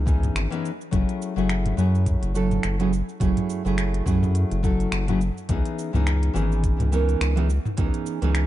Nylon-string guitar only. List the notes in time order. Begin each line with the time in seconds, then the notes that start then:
0.06 E3 B3 C#4 D#4 G#4
0.50 E3 B3 C#4 D#4 G#4
0.91 F#3 A3 C#4 E4 G#4
1.36 F#3 A3 C#4 E4 G#4
1.77 F#3 A3 C#4 E4 G#4
2.34 F#3 A3 C#4 E4 A4
2.79 F#3 A3 C#4 E4 G#4
3.20 F#3 A3 C#4 E4 G#4
3.65 F#3 A3 C#4 E4 G#4
4.06 F#3 A3 C#4 E4 G#4
4.63 F#3 A3 C#4 E4 A4
5.08 F#3 A3 C#4 E4 G#4
5.49 E3 B3 C#4 D#4 G#4
5.93 E3 B3 C#4 D#4 G#4
6.34 E3 B3 C#4 D#4 G#4
6.92 E3 B3 C#4 D#4 A#4
7.36 E3 B3 C#4 D#4 G#4
7.77 E3 B3 C#4 D#4 G#4
8.22 E3 B3 C#4 D#4 G#4